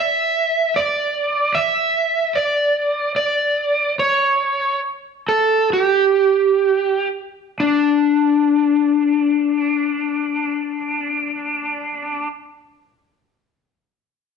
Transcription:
0.00 E5
0.76 D5
1.55 E5
2.35 D5
3.16 D5
3.99 C#5
5.28 A4
5.73 G4
7.60 D4

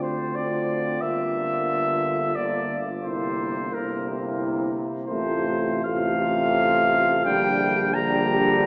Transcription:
Already playing: D2 D3 C4 F4
0.02 C5
0.34 D3 C4 F4 D5
1.01 G1 D3 A#3 F4 E5
2.35 D3 A#3 F4 D5
3.03 C3 A#3 E4 C5
3.73 C3 A#3 E4 A#4
5.07 A1 C3 A3 F4 C5
5.84 C3 A3 F4 F5
7.25 A#1 D3 G3 G4 G5
7.94 D3 G3 G4 A#5

